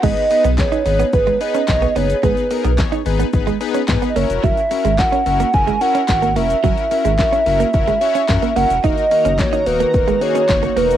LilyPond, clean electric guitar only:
\new Staff \with { instrumentName = "Clean electric guitar" } { \time 4/4 \key gis \minor \tempo 4 = 109 gis16 r8 b16 r16 dis'16 r16 b16 r16 gis16 r16 cis'16 r16 b16 b16 r16 | gis16 r8 b16 r16 dis'16 r16 b16 r16 gis16 r16 cis'16 r16 b16 ais16 r16 | fis16 r8 gis16 r16 cis'16 r16 ais16 r16 gis16 r16 cis'16 r16 ais16 ais16 r16 | fis16 r8 gis16 r16 cis'16 r16 ais16 r16 gis16 r16 cis'16 r16 ais16 ais16 r16 |
dis'16 r8 cis'16 r16 dis'16 r16 ais16 r16 gis16 r16 cis'16 r16 ais16 ais16 r16 | }